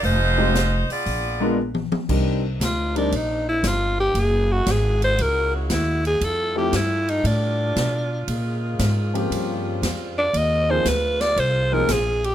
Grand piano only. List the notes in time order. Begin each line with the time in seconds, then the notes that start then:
0.37 G#3 C4 D#4 F4 G4
1.40 G#3 B3 D4 F4 A#4
2.09 G3 C4 D4 D#4 A#4
2.95 G3 C4 D4 D#4 A#4
6.55 F3 A3 C4 E4 G4
9.14 F3 A#3 C4 C#4 G4
10.69 F3 A#3 C4 D#4 G#4
11.72 F3 A#3 C4 D#4 G#4